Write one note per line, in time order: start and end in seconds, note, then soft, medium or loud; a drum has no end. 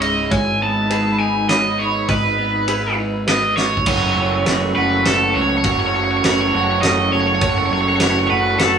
0.00 0.28 C#1 medium
0.00 0.28 C#3 medium
0.00 0.32 C#3 medium
0.00 3.82 G#3 medium
0.00 0.62 G#3 medium
0.00 0.28 E4 medium
0.00 0.32 E4 medium
0.00 0.29 C#5 medium
0.00 0.32 D#5 medium
0.00 ride soft
0.30 2.06 G#1 medium
0.30 1.80 G#2 medium
0.30 3.83 D#4 medium
0.30 3.83 B4 medium
0.30 0.90 C#5 medium
0.30 0.59 G#5 medium
0.30 kick medium
0.30 ride soft
0.62 1.48 B3 medium
0.62 1.19 A5 medium
0.90 2.39 G#4 medium
0.90 1.50 B4 medium
0.90 ride soft
1.19 1.78 D#4 medium
1.19 1.49 G#5 medium
1.49 2.37 B3 medium
1.49 2.09 C#5 medium
1.49 1.80 D#5 medium
1.49 snare medium
1.49 ride soft
1.79 2.97 D#4 medium
1.79 2.09 C#5 medium
2.08 3.83 G#1 medium
2.08 3.57 G#2 medium
2.08 2.94 B4 medium
2.08 2.69 D#5 medium
2.08 kick medium
2.08 ride soft
2.38 3.26 B3 medium
2.68 3.86 G#4 medium
2.68 3.25 B4 medium
2.68 ride medium
2.98 3.56 D#4 medium
3.27 3.87 B3 medium
3.27 3.86 B4 medium
3.27 3.56 D#5 medium
3.27 snare medium
3.27 ride medium
3.56 3.87 D#4 medium
3.56 4.75 C#5 loud
3.56 snare medium
3.77 kick medium
3.86 4.14 F#1 medium
3.86 4.78 F#2 medium
3.86 5.66 F#2 medium
3.86 4.74 C#3 medium
3.86 4.78 F#3 medium
3.86 4.77 A3 medium
3.86 4.77 C#4 medium
3.86 4.76 F#4 medium
3.86 8.79 A4 medium
3.86 4.46 C#5 medium
3.86 8.79 F#5 medium
3.86 8.79 C#6 medium
3.86 kick medium
3.86 crash medium
4.16 4.43 F#1 medium
4.16 5.95 F#3 medium
4.46 4.73 F#1 medium
4.46 5.05 A3 medium
4.46 5.04 B4 medium
4.46 snare medium
4.46 ride medium
4.75 5.03 F#1 medium
4.75 5.64 F#2 medium
4.75 5.64 C#3 medium
4.75 5.65 F#3 medium
4.75 5.65 A3 medium
4.75 5.65 C#4 medium
4.75 5.66 F#4 medium
4.75 6.52 F#4 medium
4.75 5.03 B4 medium
5.05 5.33 F#1 medium
5.05 6.24 A3 medium
5.05 5.36 A4 medium
5.05 5.65 B4 medium
5.05 snare medium
5.05 ride medium
5.34 5.62 C#2 medium
5.34 7.13 C#4 medium
5.34 5.41 C#5 medium
5.41 5.49 C#5 medium
5.50 5.57 C#5 medium
5.58 5.64 C#5 medium
5.64 6.20 F#1 medium
5.64 6.55 F#2 medium
5.64 7.42 F#2 medium
5.64 6.52 C#3 medium
5.64 6.54 F#3 medium
5.64 6.53 A3 medium
5.64 6.53 C#4 medium
5.64 6.53 F#4 medium
5.64 6.24 A4 medium
5.64 5.71 C#5 medium
5.64 kick medium
5.64 ride soft
5.72 5.79 C#5 medium
5.80 5.86 C#5 medium
5.87 5.94 C#5 medium
5.95 7.72 F#3 medium
5.95 6.03 C#5 medium
6.04 6.11 C#5 medium
6.11 6.17 C#5 medium
6.17 6.25 C#5 medium
6.24 6.51 F#1 medium
6.24 6.82 A3 medium
6.24 6.83 B4 medium
6.24 6.32 C#5 medium
6.24 snare medium
6.24 ride medium
6.32 6.40 C#5 medium
6.41 6.48 C#5 medium
6.48 6.55 C#5 medium
6.53 6.80 F#1 medium
6.53 7.41 F#2 medium
6.53 7.40 C#3 medium
6.53 7.42 F#3 medium
6.53 7.42 A3 medium
6.53 7.42 C#4 medium
6.53 8.30 F#4 medium
6.53 7.43 F#4 medium
6.53 6.63 C#5 medium
6.63 6.71 C#5 medium
6.71 6.79 C#5 medium
6.82 7.10 F#1 medium
6.82 8.02 A3 medium
6.82 7.40 C#5 medium
6.82 7.12 D#5 medium
6.82 snare medium
6.82 ride medium
7.12 7.39 F#1 medium
7.12 8.79 C#4 medium
7.12 7.20 C#5 medium
7.20 7.27 C#5 medium
7.27 7.34 C#5 medium
7.35 7.42 C#5 medium
7.41 7.68 F#1 medium
7.41 8.32 F#2 medium
7.41 8.79 F#2 medium
7.41 8.29 C#3 medium
7.41 8.31 F#3 medium
7.41 8.31 A3 medium
7.41 8.31 C#4 medium
7.41 8.30 F#4 medium
7.41 8.01 C#5 medium
7.41 7.49 C#5 medium
7.41 kick medium
7.41 ride medium
7.50 7.57 C#5 medium
7.58 7.65 C#5 medium
7.66 7.73 C#5 medium
7.71 7.98 F#1 medium
7.71 8.79 F#3 medium
7.71 7.80 C#5 medium
7.81 7.88 C#5 medium
7.88 7.96 C#5 medium
7.96 8.58 B4 medium
7.96 8.03 C#5 medium
7.96 snare medium
7.96 ride medium
8.00 8.27 F#1 medium
8.00 8.59 A3 medium
8.00 8.10 C#5 medium
8.11 8.18 C#5 medium
8.19 8.27 C#5 medium
8.27 8.57 F#1 medium
8.27 8.79 C#4 medium
8.27 8.79 F#4 medium
8.27 8.61 B4 medium
8.27 8.30 C#5 medium
8.31 8.79 F#2 medium
8.31 8.79 C#3 medium
8.31 8.79 F#3 medium
8.31 8.79 A3 medium
8.59 8.79 F#1 medium
8.59 8.79 A3 medium
8.59 8.79 A4 medium
8.59 8.79 B4 medium
8.59 snare medium
8.59 ride medium